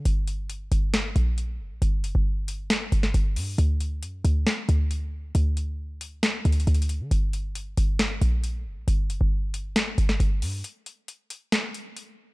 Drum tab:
HH |x-----x-----x-----x-----x-----x-----x-----------|x-----x-----------x-----x-----x-----x-----o-----|x-----x-----x-----x-----x-----x-----x-----------|x-----x-----------x-----x-----x-x-x-x-x-x-x-----|
SD |------------------------o-----------------------|------------------------o--------o--------------|------------------------o-----------------------|------------------------o-----------------------|

HH |x-----x-----x-----x-----x-----x-----x-----------|x-----x-----------x-----x-----x-----x-----o-----|x-----x-----x-----x-----x-----x-----x-----------|
SD |------------------------o-----------------------|------------------------o--------o--------------|------------------------o-----------------------|